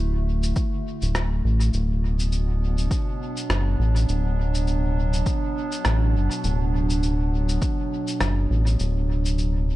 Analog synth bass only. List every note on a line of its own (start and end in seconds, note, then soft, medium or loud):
0.00 0.53 D1 loud
1.02 1.42 D1 loud
1.44 1.71 A1 medium
1.73 2.89 D1 loud
3.50 3.76 F#1 loud
3.79 4.06 A1 medium
4.09 5.24 D1 loud
5.85 6.16 A1 loud
6.15 6.29 F#1 medium
6.44 7.59 D1 loud
8.21 8.47 F#1 loud
8.50 8.76 A1 medium
8.80 9.76 D1 loud